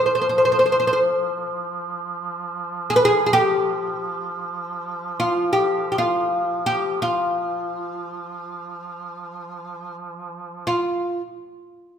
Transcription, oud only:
0, 0, Header, 1, 2, 480
1, 0, Start_track
1, 0, Tempo, 500000
1, 11508, End_track
2, 0, Start_track
2, 0, Title_t, "Oud"
2, 0, Program_c, 0, 24
2, 57, Note_on_c, 0, 72, 38
2, 126, Note_off_c, 0, 72, 0
2, 144, Note_on_c, 0, 72, 46
2, 195, Note_off_c, 0, 72, 0
2, 207, Note_on_c, 0, 72, 41
2, 272, Note_off_c, 0, 72, 0
2, 282, Note_on_c, 0, 72, 45
2, 346, Note_off_c, 0, 72, 0
2, 365, Note_on_c, 0, 72, 39
2, 421, Note_off_c, 0, 72, 0
2, 433, Note_on_c, 0, 72, 49
2, 487, Note_off_c, 0, 72, 0
2, 498, Note_on_c, 0, 72, 41
2, 556, Note_off_c, 0, 72, 0
2, 567, Note_on_c, 0, 72, 48
2, 619, Note_off_c, 0, 72, 0
2, 631, Note_on_c, 0, 72, 42
2, 681, Note_off_c, 0, 72, 0
2, 692, Note_on_c, 0, 72, 50
2, 753, Note_off_c, 0, 72, 0
2, 764, Note_on_c, 0, 72, 45
2, 827, Note_off_c, 0, 72, 0
2, 839, Note_on_c, 0, 72, 56
2, 880, Note_off_c, 0, 72, 0
2, 892, Note_on_c, 0, 72, 47
2, 970, Note_off_c, 0, 72, 0
2, 2784, Note_on_c, 0, 68, 77
2, 2838, Note_off_c, 0, 68, 0
2, 2842, Note_on_c, 0, 71, 74
2, 2911, Note_off_c, 0, 71, 0
2, 2928, Note_on_c, 0, 68, 83
2, 3122, Note_off_c, 0, 68, 0
2, 3134, Note_on_c, 0, 68, 63
2, 3195, Note_off_c, 0, 68, 0
2, 3199, Note_on_c, 0, 67, 85
2, 4985, Note_off_c, 0, 67, 0
2, 4989, Note_on_c, 0, 65, 74
2, 5299, Note_off_c, 0, 65, 0
2, 5306, Note_on_c, 0, 67, 73
2, 5670, Note_off_c, 0, 67, 0
2, 5682, Note_on_c, 0, 67, 52
2, 5740, Note_off_c, 0, 67, 0
2, 5744, Note_on_c, 0, 65, 69
2, 6393, Note_off_c, 0, 65, 0
2, 6396, Note_on_c, 0, 67, 81
2, 6725, Note_off_c, 0, 67, 0
2, 6739, Note_on_c, 0, 65, 72
2, 9547, Note_off_c, 0, 65, 0
2, 10243, Note_on_c, 0, 65, 69
2, 10757, Note_off_c, 0, 65, 0
2, 11508, End_track
0, 0, End_of_file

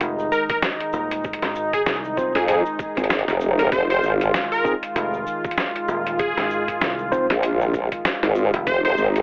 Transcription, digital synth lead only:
0, 0, Header, 1, 2, 480
1, 0, Start_track
1, 0, Key_signature, -4, "minor"
1, 0, Tempo, 618557
1, 965, Time_signature, 4, 2, 24, 8
1, 7156, End_track
2, 0, Start_track
2, 0, Title_t, "Digital synth lead"
2, 0, Program_c, 0, 84
2, 247, Note_on_c, 0, 70, 91
2, 335, Note_off_c, 0, 70, 0
2, 384, Note_on_c, 0, 70, 81
2, 449, Note_off_c, 0, 70, 0
2, 1348, Note_on_c, 0, 68, 93
2, 1411, Note_off_c, 0, 68, 0
2, 1445, Note_on_c, 0, 68, 80
2, 1534, Note_off_c, 0, 68, 0
2, 1827, Note_on_c, 0, 68, 89
2, 1890, Note_off_c, 0, 68, 0
2, 1931, Note_on_c, 0, 68, 79
2, 2017, Note_off_c, 0, 68, 0
2, 2787, Note_on_c, 0, 70, 85
2, 2850, Note_off_c, 0, 70, 0
2, 2889, Note_on_c, 0, 72, 93
2, 2998, Note_off_c, 0, 72, 0
2, 3027, Note_on_c, 0, 72, 98
2, 3194, Note_off_c, 0, 72, 0
2, 3506, Note_on_c, 0, 70, 97
2, 3674, Note_off_c, 0, 70, 0
2, 4806, Note_on_c, 0, 68, 100
2, 5485, Note_off_c, 0, 68, 0
2, 6727, Note_on_c, 0, 72, 98
2, 6837, Note_off_c, 0, 72, 0
2, 6865, Note_on_c, 0, 72, 99
2, 7033, Note_off_c, 0, 72, 0
2, 7156, End_track
0, 0, End_of_file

